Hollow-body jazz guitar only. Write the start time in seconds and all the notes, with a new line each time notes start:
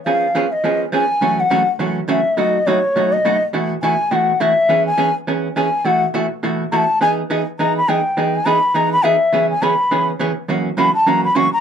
0.06 F3 B3 C#4 G#4
0.35 F3 B3 C#4 G#4
0.64 F3 B3 C#4 G#4
0.92 F3 B3 C#4 G#4
1.21 F#2 C#3 E3 A3 C#4 F#4
1.50 F#2 C#3 E3 A3 C#4 F#4
1.79 F#2 C#3 E3 A3 C#4 F#4
2.08 F#2 C#3 E3 A3 C#4 F#4
2.37 B2 F#3 A3 D#4 F#4
2.67 B2 F#3 A3 D#4 F#4
2.96 B2 F#3 A3 D#4 F#4
3.25 B2 F#3 A3 D#4 F#4
3.53 B2 E3 A3 E4 F#4
3.83 B2 E3 A3 E4 F#4
4.11 B2 E3 A3 E4 F#4
4.40 B2 E3 A3 E4 F#4
4.69 E3 B3 C#4 G#4
4.98 E3 B3 C#4 G#4
5.27 E3 B3 C#4 G#4
5.56 E3 B3 C#4 G#4
5.85 B2 E3 A3 E4 F#4
6.14 B2 E3 A3 E4 F#4
6.43 B2 E3 A3 E4 F#4
6.72 B2 E3 A3 E4 F#4
7.01 E3 B3 D#4 G#4
7.30 E3 B3 D#4 G#4
7.59 E3 B3 D#4 G#4
7.88 E3 B3 D#4 G#4
8.17 E3 B3 D#4 G#4
8.46 E3 B3 D#4 G#4
8.74 E3 B3 D#4 G#4
9.04 E3 B3 D#4 G#4
9.33 C#3 E3 B3 C#4 G#4
9.62 C#3 E3 B3 C#4 G#4
9.91 C#3 E3 B3 C#4 G#4
10.19 C#3 E3 B3 C#4 G#4
10.48 F#2 C#3 E3 A#3 C#4 F#4
10.77 F#2 C#3 E3 A#3 C#4 F#4
11.06 F#2 C#3 E3 A#3 C#4 F#4
11.35 F#2 C#3 E3 A#3 C#4 F#4